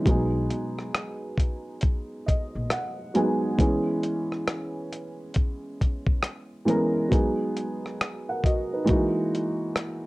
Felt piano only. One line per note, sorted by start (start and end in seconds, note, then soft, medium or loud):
0.05 1.34 F#3 medium
0.05 1.35 G#3 medium
0.05 1.35 B3 medium
0.05 1.36 D#4 medium
0.10 1.37 G#4 medium
2.26 2.68 D#5 medium
2.72 3.12 F#5 medium
3.14 3.50 F#3 medium
3.14 3.50 G#3 medium
3.14 3.51 B3 medium
3.14 3.51 D#4 medium
3.14 3.56 G#5 medium
3.18 3.52 G#4 medium
3.57 4.87 E3 medium
3.57 4.87 G#3 medium
3.57 4.88 B3 medium
3.57 4.88 C#4 medium
3.57 4.89 G#4 medium
6.65 7.02 E3 medium
6.65 7.02 G#3 medium
6.65 7.03 B3 medium
6.65 7.04 C#4 medium
6.70 7.04 A#4 loud
7.09 8.39 F#3 medium
7.09 8.40 G#3 medium
7.09 8.40 B3 medium
7.09 7.56 D#4 medium
7.14 7.57 G#4 medium
8.29 8.44 A#4 medium
8.29 8.44 F#5 medium
8.45 8.72 F#4 medium
8.45 8.72 D#5 medium
8.73 8.86 D#4 medium
8.73 9.15 B4 medium
8.84 9.97 E3 loud
8.84 9.98 G#3 medium
8.84 9.98 A#3 medium
8.84 9.99 D#4 medium
8.89 10.00 F#4 loud